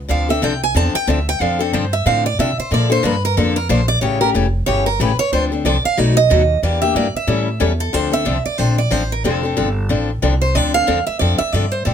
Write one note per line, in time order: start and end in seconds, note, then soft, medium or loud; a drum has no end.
0.09 0.41 D2 medium
0.09 0.27 D3 medium
0.09 0.28 F3 medium
0.09 0.28 C4 medium
0.09 0.28 D4 medium
0.09 0.28 A4 medium
0.09 0.29 F5 medium
0.29 0.42 C4 soft
0.29 0.42 D4 medium
0.29 0.42 A4 medium
0.29 0.42 E5 loud
0.42 0.74 C2 medium
0.42 0.53 D3 medium
0.42 0.53 F3 medium
0.42 0.53 C4 medium
0.42 0.53 D4 medium
0.42 0.53 A4 loud
0.42 0.62 G5 medium
0.63 0.75 G#5 loud
0.74 0.93 E2 medium
0.74 0.95 D3 medium
0.74 0.95 F3 medium
0.74 0.95 C4 medium
0.74 0.95 D4 medium
0.74 0.95 A4 medium
0.74 0.94 A5 loud
0.94 1.08 G5 loud
0.94 muted upright bass stroke soft
1.07 1.39 D2 medium
1.07 1.18 D3 medium
1.07 1.18 F3 medium
1.07 1.18 C4 medium
1.07 1.18 D4 medium
1.07 1.19 A4 medium
1.07 1.27 E5 medium
1.29 1.41 G5 loud
1.40 1.72 F2 medium
1.40 1.59 D3 medium
1.40 1.59 F3 medium
1.40 1.59 C4 medium
1.40 1.59 D4 medium
1.40 1.58 A4 medium
1.40 1.60 F5 medium
1.59 1.72 C4 soft
1.59 1.73 D4 medium
1.59 1.72 A4 medium
1.59 1.73 A4 medium
1.73 2.05 G2 medium
1.73 1.84 D3 medium
1.73 1.84 F3 medium
1.73 1.84 C4 medium
1.73 1.84 D4 medium
1.73 1.84 A4 medium
1.73 1.92 C5 medium
1.93 2.06 E5 medium
2.06 2.37 A2 medium
2.06 2.26 D3 medium
2.06 2.26 F3 medium
2.06 2.26 C4 medium
2.06 2.26 D4 medium
2.06 2.26 A4 medium
2.06 2.25 F5 medium
2.26 2.38 D5 loud
2.38 2.56 C3 medium
2.38 2.49 D3 medium
2.38 2.50 F3 medium
2.38 2.50 C4 medium
2.38 2.50 D4 medium
2.38 2.50 A4 medium
2.38 2.58 E5 loud
2.58 2.72 C5 medium
2.58 muted upright bass stroke soft
2.71 3.03 A#2 medium
2.71 2.89 D3 medium
2.71 2.90 F3 medium
2.71 2.90 A#3 medium
2.71 2.90 D4 medium
2.71 2.89 A4 medium
2.71 2.91 D5 medium
2.90 3.03 A#3 soft
2.90 3.03 D4 medium
2.90 3.03 A4 medium
2.90 3.04 C5 loud
3.03 3.36 G2 medium
3.03 3.14 D3 medium
3.03 3.14 F3 medium
3.03 3.14 A#3 medium
3.03 3.14 D4 medium
3.03 3.15 A4 medium
3.03 3.23 B4 medium
3.25 3.37 A#4 loud
3.37 3.69 F2 loud
3.37 3.57 D3 medium
3.37 3.57 F3 medium
3.37 3.57 A#3 medium
3.37 3.57 D4 medium
3.37 3.56 A4 medium
3.37 3.57 A4 medium
3.56 3.69 A#4 medium
3.69 4.01 A#1 medium
3.69 3.80 D3 medium
3.69 3.80 F3 medium
3.69 3.80 A#3 medium
3.69 3.80 D4 medium
3.69 3.80 A4 medium
3.69 3.88 C5 medium
3.88 4.01 D5 loud
4.01 4.33 A1 medium
4.01 4.20 C#3 medium
4.01 4.21 E3 medium
4.01 4.21 A3 medium
4.01 4.20 C#4 medium
4.01 4.19 G4 medium
4.01 4.20 C#5 medium
4.21 4.34 A3 soft
4.21 4.34 C#4 medium
4.21 4.34 G4 medium
4.21 4.29 A#4 medium
4.34 4.66 F1 loud
4.34 4.45 C#3 medium
4.34 4.45 E3 medium
4.34 4.45 A3 medium
4.34 4.46 C#4 medium
4.34 4.46 G4 loud
4.66 4.99 G1 medium
4.66 4.87 C#3 medium
4.66 4.87 E3 medium
4.66 4.87 A3 medium
4.66 4.87 C#4 medium
4.66 4.87 G4 medium
4.66 4.85 C#5 medium
4.86 4.99 A#4 loud
5.00 5.18 A1 loud
5.00 5.10 C#3 medium
5.00 5.11 E3 medium
5.00 5.11 A3 medium
5.00 5.11 C#4 medium
5.00 5.11 G4 medium
5.00 5.19 B4 medium
5.19 5.32 C#5 loud
5.19 muted upright bass stroke soft
5.32 5.64 D2 medium
5.32 5.51 D3 medium
5.32 5.51 F3 medium
5.32 5.52 C4 medium
5.32 5.51 D4 medium
5.32 5.51 A4 medium
5.32 5.44 C5 medium
5.52 5.65 C4 soft
5.52 5.65 D4 medium
5.52 5.65 A4 medium
5.65 5.83 C2 medium
5.65 5.76 D3 medium
5.65 5.76 F3 medium
5.65 5.76 C4 medium
5.65 5.76 D4 medium
5.65 5.76 A4 medium
5.65 5.84 D5 medium
5.84 5.99 F5 loud
5.84 muted upright bass stroke soft
5.97 6.30 B1 medium
5.97 6.17 B2 medium
5.97 6.17 F#3 medium
5.97 6.18 A3 medium
5.97 6.18 D#4 medium
5.97 6.18 F#4 medium
5.97 6.16 D5 medium
6.17 6.60 D#5 loud
6.30 6.62 D#2 loud
6.30 6.41 B2 medium
6.30 6.41 F#3 medium
6.30 6.41 A3 loud
6.30 6.41 D#4 loud
6.30 6.41 F#4 loud
6.63 6.94 E2 medium
6.63 6.82 E3 medium
6.63 6.82 A#3 medium
6.63 6.82 D4 medium
6.63 6.81 G4 medium
6.63 6.81 D5 medium
6.82 6.95 A#3 soft
6.82 6.95 D4 medium
6.82 6.95 G4 medium
6.82 6.95 E5 loud
6.95 7.13 G2 medium
6.95 7.06 E3 medium
6.95 7.06 A#3 medium
6.95 7.07 D4 medium
6.95 7.07 G4 medium
6.95 7.15 D5 medium
7.14 7.59 E5 loud
7.14 muted upright bass stroke soft
7.27 7.59 A2 medium
7.27 7.48 E3 medium
7.27 7.48 G3 medium
7.27 7.48 C#4 medium
7.27 7.48 E4 medium
7.27 7.48 A4 medium
7.60 7.93 E2 loud
7.60 7.71 E3 medium
7.60 7.71 G3 medium
7.60 7.71 C#4 medium
7.60 7.71 E4 medium
7.60 7.72 A4 loud
7.80 7.94 A4 medium
7.93 8.25 D2 medium
7.93 8.12 D3 medium
7.93 8.12 F3 medium
7.93 8.12 C4 medium
7.93 8.11 D4 medium
7.93 8.10 A4 medium
7.93 8.14 C5 medium
8.12 8.25 C4 soft
8.12 8.25 D4 soft
8.12 8.25 A4 medium
8.12 8.44 E5 loud
8.25 8.44 C2 medium
8.25 8.36 D3 medium
8.25 8.37 F3 medium
8.25 8.37 C4 medium
8.25 8.37 D4 medium
8.25 8.37 A4 medium
8.45 8.58 D5 medium
8.45 muted upright bass stroke soft
8.58 8.91 A#1 medium
8.58 8.79 D3 medium
8.58 8.79 F3 medium
8.58 8.79 C4 medium
8.58 8.79 D4 medium
8.58 8.79 A4 medium
8.58 8.78 C5 medium
8.78 8.92 D5 medium
8.91 9.23 A1 medium
8.91 9.02 D3 medium
8.91 9.02 F3 medium
8.91 9.02 C4 medium
8.91 9.02 D4 medium
8.91 9.02 A4 medium
8.91 9.11 C5 medium
9.12 9.24 A#4 medium
9.24 9.56 F1 medium
9.24 9.43 D3 medium
9.24 9.43 F3 medium
9.24 9.43 C4 medium
9.24 9.43 D4 medium
9.24 9.86 A4 medium
9.24 9.42 A4 medium
9.43 9.56 C4 soft
9.43 9.56 D4 soft
9.43 9.56 A4 soft
9.57 9.89 G1 medium
9.57 9.67 D3 medium
9.57 9.68 F3 medium
9.57 9.68 C4 medium
9.57 9.68 D4 medium
9.57 9.68 A4 medium
9.89 10.22 A1 medium
9.89 10.09 D3 medium
9.89 10.09 F3 medium
9.89 10.10 C4 medium
9.89 10.10 D4 medium
9.89 10.10 A4 medium
10.22 10.54 C2 loud
10.22 10.33 D3 medium
10.22 10.33 F3 medium
10.22 10.33 C4 medium
10.22 10.33 D4 medium
10.22 10.34 A4 medium
10.41 10.55 C5 medium
10.55 10.87 D2 medium
10.55 10.74 D3 medium
10.55 10.74 F3 medium
10.55 10.74 C4 medium
10.55 10.74 D4 medium
10.55 10.73 A4 medium
10.55 10.74 D5 loud
10.74 10.86 C4 soft
10.74 10.87 D4 soft
10.74 10.87 A4 medium
10.74 11.06 F5 loud
10.87 11.06 E2 medium
10.87 10.98 D3 medium
10.87 10.98 F3 medium
10.87 10.98 C4 medium
10.87 10.99 D4 medium
10.87 10.99 A4 medium
11.07 11.19 E5 loud
11.07 muted upright bass stroke soft
11.19 11.39 F2 medium
11.19 11.41 D3 medium
11.19 11.41 F3 medium
11.19 11.41 C4 medium
11.19 11.41 D4 medium
11.19 11.41 A4 medium
11.19 11.38 D5 medium
11.38 11.52 E5 loud
11.38 muted upright bass stroke soft
11.52 11.85 G2 medium
11.52 11.64 D3 medium
11.52 11.65 F3 medium
11.52 11.65 C4 medium
11.52 11.65 D4 medium
11.52 11.65 A4 medium
11.52 11.73 D5 medium
11.72 11.85 C5 medium
11.85 11.94 A2 medium
11.85 11.94 D3 medium
11.85 11.94 F3 medium
11.85 11.94 C4 medium
11.85 11.94 D4 medium
11.85 11.94 A4 medium